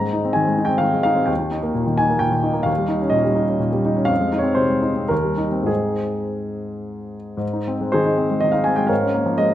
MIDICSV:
0, 0, Header, 1, 2, 480
1, 0, Start_track
1, 0, Key_signature, -4, "major"
1, 0, Tempo, 471698
1, 1320, Time_signature, 3, 2, 24, 8
1, 4670, Tempo, 519931
1, 5150, Tempo, 577478
1, 7070, Tempo, 490196
1, 9147, End_track
2, 0, Start_track
2, 0, Title_t, "Grand piano"
2, 0, Program_c, 0, 0
2, 0, Note_on_c, 0, 44, 43
2, 0, Note_on_c, 0, 82, 75
2, 9, Note_on_c, 0, 56, 37
2, 36, Control_c, 0, 64, 127
2, 130, Note_on_c, 0, 63, 43
2, 192, Note_off_c, 0, 56, 0
2, 251, Note_on_c, 0, 60, 44
2, 314, Note_off_c, 0, 63, 0
2, 337, Note_on_c, 0, 80, 63
2, 341, Note_off_c, 0, 82, 0
2, 363, Note_on_c, 0, 51, 43
2, 436, Note_off_c, 0, 60, 0
2, 482, Note_on_c, 0, 56, 41
2, 552, Note_off_c, 0, 51, 0
2, 592, Note_on_c, 0, 63, 44
2, 660, Note_on_c, 0, 79, 68
2, 668, Note_off_c, 0, 80, 0
2, 671, Note_off_c, 0, 56, 0
2, 694, Note_on_c, 0, 60, 42
2, 786, Note_off_c, 0, 63, 0
2, 794, Note_on_c, 0, 77, 69
2, 811, Note_on_c, 0, 51, 42
2, 828, Note_off_c, 0, 79, 0
2, 896, Note_off_c, 0, 60, 0
2, 949, Note_on_c, 0, 56, 41
2, 1015, Note_off_c, 0, 51, 0
2, 1037, Note_off_c, 0, 77, 0
2, 1052, Note_on_c, 0, 77, 74
2, 1069, Note_on_c, 0, 63, 51
2, 1146, Note_off_c, 0, 56, 0
2, 1171, Note_on_c, 0, 60, 42
2, 1254, Note_off_c, 0, 44, 0
2, 1268, Note_off_c, 0, 63, 0
2, 1279, Note_on_c, 0, 79, 54
2, 1294, Note_on_c, 0, 39, 43
2, 1307, Note_off_c, 0, 60, 0
2, 1308, Note_off_c, 0, 77, 0
2, 1340, Control_c, 0, 64, 0
2, 1413, Note_on_c, 0, 51, 37
2, 1506, Control_c, 0, 64, 127
2, 1540, Note_on_c, 0, 63, 45
2, 1620, Note_off_c, 0, 51, 0
2, 1655, Note_on_c, 0, 58, 44
2, 1743, Note_off_c, 0, 63, 0
2, 1775, Note_on_c, 0, 46, 42
2, 1858, Note_off_c, 0, 58, 0
2, 1895, Note_on_c, 0, 51, 40
2, 1977, Note_off_c, 0, 46, 0
2, 2010, Note_on_c, 0, 80, 72
2, 2017, Note_off_c, 0, 79, 0
2, 2033, Note_on_c, 0, 63, 42
2, 2096, Note_off_c, 0, 51, 0
2, 2132, Note_on_c, 0, 58, 46
2, 2223, Note_off_c, 0, 63, 0
2, 2230, Note_on_c, 0, 79, 68
2, 2249, Note_on_c, 0, 46, 44
2, 2258, Note_off_c, 0, 80, 0
2, 2330, Note_off_c, 0, 58, 0
2, 2356, Note_on_c, 0, 51, 41
2, 2448, Note_off_c, 0, 46, 0
2, 2474, Note_on_c, 0, 63, 47
2, 2561, Note_off_c, 0, 51, 0
2, 2577, Note_on_c, 0, 58, 42
2, 2676, Note_on_c, 0, 77, 66
2, 2680, Note_off_c, 0, 63, 0
2, 2686, Note_off_c, 0, 39, 0
2, 2702, Note_on_c, 0, 39, 46
2, 2720, Note_off_c, 0, 58, 0
2, 2723, Note_off_c, 0, 79, 0
2, 2763, Control_c, 0, 64, 0
2, 2830, Note_on_c, 0, 55, 41
2, 2892, Control_c, 0, 64, 127
2, 2935, Note_on_c, 0, 63, 44
2, 3036, Note_off_c, 0, 55, 0
2, 3066, Note_on_c, 0, 61, 49
2, 3146, Note_off_c, 0, 63, 0
2, 3151, Note_on_c, 0, 75, 70
2, 3170, Note_on_c, 0, 46, 45
2, 3182, Note_off_c, 0, 77, 0
2, 3269, Note_off_c, 0, 61, 0
2, 3300, Note_on_c, 0, 55, 42
2, 3381, Note_off_c, 0, 46, 0
2, 3409, Note_on_c, 0, 63, 45
2, 3507, Note_off_c, 0, 55, 0
2, 3534, Note_on_c, 0, 61, 42
2, 3623, Note_off_c, 0, 63, 0
2, 3659, Note_on_c, 0, 46, 42
2, 3661, Note_off_c, 0, 75, 0
2, 3748, Note_off_c, 0, 61, 0
2, 3791, Note_on_c, 0, 55, 44
2, 3870, Note_off_c, 0, 46, 0
2, 3921, Note_on_c, 0, 63, 49
2, 3995, Note_off_c, 0, 55, 0
2, 4036, Note_on_c, 0, 61, 46
2, 4112, Note_off_c, 0, 39, 0
2, 4119, Note_off_c, 0, 63, 0
2, 4122, Note_on_c, 0, 77, 73
2, 4147, Note_on_c, 0, 41, 47
2, 4165, Note_off_c, 0, 61, 0
2, 4191, Control_c, 0, 64, 0
2, 4281, Note_on_c, 0, 56, 40
2, 4371, Control_c, 0, 64, 127
2, 4398, Note_on_c, 0, 63, 46
2, 4460, Note_on_c, 0, 73, 59
2, 4475, Note_off_c, 0, 77, 0
2, 4485, Note_off_c, 0, 56, 0
2, 4500, Note_on_c, 0, 60, 44
2, 4608, Note_off_c, 0, 63, 0
2, 4627, Note_on_c, 0, 72, 63
2, 4646, Note_on_c, 0, 48, 40
2, 4648, Note_off_c, 0, 73, 0
2, 4719, Note_off_c, 0, 60, 0
2, 4760, Note_on_c, 0, 56, 36
2, 4845, Note_off_c, 0, 48, 0
2, 4884, Note_on_c, 0, 63, 42
2, 4963, Note_off_c, 0, 56, 0
2, 5014, Note_on_c, 0, 60, 37
2, 5089, Note_off_c, 0, 63, 0
2, 5108, Note_off_c, 0, 41, 0
2, 5127, Note_on_c, 0, 70, 60
2, 5130, Note_off_c, 0, 72, 0
2, 5144, Note_off_c, 0, 60, 0
2, 5146, Note_on_c, 0, 39, 47
2, 5165, Control_c, 0, 64, 0
2, 5254, Note_on_c, 0, 55, 35
2, 5330, Control_c, 0, 64, 127
2, 5370, Note_on_c, 0, 63, 39
2, 5452, Note_off_c, 0, 55, 0
2, 5488, Note_on_c, 0, 60, 37
2, 5574, Note_off_c, 0, 63, 0
2, 5581, Note_on_c, 0, 44, 38
2, 5586, Note_on_c, 0, 56, 30
2, 5591, Note_off_c, 0, 60, 0
2, 5604, Note_on_c, 0, 60, 30
2, 5612, Note_on_c, 0, 68, 47
2, 5616, Note_off_c, 0, 39, 0
2, 5616, Note_on_c, 0, 63, 29
2, 5622, Note_off_c, 0, 70, 0
2, 5647, Control_c, 0, 64, 0
2, 5837, Control_c, 0, 64, 127
2, 6832, Note_off_c, 0, 68, 0
2, 7011, Note_off_c, 0, 44, 0
2, 7014, Note_off_c, 0, 56, 0
2, 7022, Note_off_c, 0, 60, 0
2, 7029, Note_off_c, 0, 63, 0
2, 7031, Note_on_c, 0, 44, 40
2, 7090, Control_c, 0, 64, 0
2, 7181, Note_on_c, 0, 63, 37
2, 7240, Control_c, 0, 64, 127
2, 7319, Note_on_c, 0, 60, 39
2, 7385, Note_off_c, 0, 63, 0
2, 7452, Note_on_c, 0, 56, 41
2, 7513, Note_off_c, 0, 60, 0
2, 7560, Note_on_c, 0, 72, 63
2, 7573, Note_on_c, 0, 68, 51
2, 7579, Note_on_c, 0, 51, 40
2, 7579, Note_on_c, 0, 63, 51
2, 7636, Note_off_c, 0, 56, 0
2, 7680, Note_off_c, 0, 63, 0
2, 7695, Note_on_c, 0, 63, 44
2, 7757, Note_off_c, 0, 51, 0
2, 7809, Note_on_c, 0, 60, 41
2, 7875, Note_off_c, 0, 63, 0
2, 7935, Note_on_c, 0, 56, 38
2, 7993, Note_off_c, 0, 60, 0
2, 8008, Note_off_c, 0, 68, 0
2, 8034, Note_off_c, 0, 72, 0
2, 8035, Note_on_c, 0, 75, 67
2, 8059, Note_on_c, 0, 51, 38
2, 8117, Note_off_c, 0, 56, 0
2, 8146, Note_on_c, 0, 77, 55
2, 8156, Note_off_c, 0, 75, 0
2, 8160, Note_on_c, 0, 63, 41
2, 8240, Note_off_c, 0, 51, 0
2, 8265, Note_on_c, 0, 80, 61
2, 8271, Note_off_c, 0, 77, 0
2, 8283, Note_on_c, 0, 60, 41
2, 8351, Note_off_c, 0, 63, 0
2, 8382, Note_on_c, 0, 79, 56
2, 8392, Note_off_c, 0, 80, 0
2, 8396, Note_on_c, 0, 56, 41
2, 8456, Note_off_c, 0, 44, 0
2, 8474, Note_off_c, 0, 60, 0
2, 8488, Note_on_c, 0, 77, 58
2, 8506, Note_on_c, 0, 70, 52
2, 8506, Note_on_c, 0, 73, 51
2, 8510, Note_on_c, 0, 44, 44
2, 8511, Note_off_c, 0, 79, 0
2, 8518, Note_off_c, 0, 56, 0
2, 8538, Control_c, 0, 64, 0
2, 8643, Note_on_c, 0, 61, 40
2, 8670, Control_c, 0, 64, 127
2, 8755, Note_on_c, 0, 58, 44
2, 8833, Note_off_c, 0, 61, 0
2, 8871, Note_on_c, 0, 53, 46
2, 8946, Note_off_c, 0, 58, 0
2, 8955, Note_off_c, 0, 70, 0
2, 8955, Note_off_c, 0, 73, 0
2, 8980, Note_off_c, 0, 77, 0
2, 8987, Note_on_c, 0, 75, 75
2, 8997, Note_on_c, 0, 56, 41
2, 9061, Note_off_c, 0, 53, 0
2, 9147, Note_off_c, 0, 44, 0
2, 9147, Note_off_c, 0, 56, 0
2, 9147, Note_off_c, 0, 75, 0
2, 9147, End_track
0, 0, End_of_file